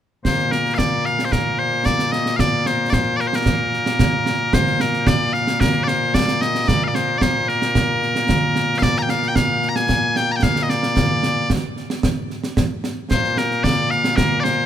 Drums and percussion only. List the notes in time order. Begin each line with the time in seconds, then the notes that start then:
0.25 concert bass drum, snare
0.39 snare
0.52 snare
0.65 snare
0.79 concert bass drum, snare
1.05 snare
1.19 snare
1.32 concert bass drum, snare
1.86 concert bass drum, snare
1.99 snare
2.13 snare
2.26 snare
2.39 concert bass drum, snare
2.66 snare
2.93 concert bass drum, snare
3.20 snare
3.33 snare
3.46 concert bass drum, snare
3.73 snare
3.86 snare
3.99 concert bass drum, snare
4.26 snare
4.53 concert bass drum, snare
4.67 snare
4.80 snare
4.93 snare
5.07 concert bass drum, snare
5.34 snare
5.47 snare
5.61 concert bass drum, snare
5.88 snare
6.14 concert bass drum, snare
6.28 snare
6.42 snare
6.55 snare
6.68 concert bass drum, snare
6.95 snare
7.21 concert bass drum, snare
7.49 snare
7.62 snare
7.75 concert bass drum, snare
8.02 snare
8.16 snare
8.29 concert bass drum, snare
8.56 snare
8.82 concert bass drum, snare
8.96 snare
9.09 snare
9.22 snare
9.36 concert bass drum, snare
9.62 snare
9.76 snare
9.89 concert bass drum, snare
10.16 snare
10.43 concert bass drum, snare
10.56 snare
10.70 snare
10.83 snare
10.97 concert bass drum, snare
11.23 snare
11.50 concert bass drum, snare
11.77 snare
11.90 snare
12.03 concert bass drum, snare
12.30 snare
12.44 snare
12.57 concert bass drum, snare
12.84 snare
13.11 concert bass drum, snare
13.24 snare
13.37 snare
13.51 snare
13.64 concert bass drum, snare
13.91 snare
14.04 snare
14.18 concert bass drum, snare
14.45 snare